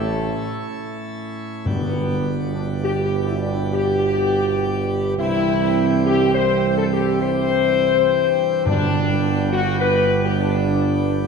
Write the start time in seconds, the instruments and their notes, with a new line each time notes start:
Already playing: tuba A1, pipe organ A2 C#4 E4 A4, french horn section A3, trumpet section A4
1.65 tuba G1, timpani G2, trombone section B2 B3, pipe organ D3 B3 D4 G4, french horn section B3, trumpet section D5 G5
2.54 french horn section D4
2.84 french horn section G4
3.27 french horn section E4
3.42 french horn section D4
3.73 french horn section G4
5.18 tuba C2, trombone section G2 C4, pipe organ E3 G3 C4 G4, french horn section E4, trumpet section E5 G5
6.06 french horn section G4
6.34 french horn section C5
6.78 french horn section A4
6.93 french horn section G4
7.21 french horn section C5
8.65 tuba G1, trombone section G2 B3, timpani G2, pipe organ D3 G3 B3 G4, french horn section D4, trumpet section D5 G5
9.53 french horn section F#4
9.80 french horn section B4
10.25 french horn section G4
10.40 french horn section D4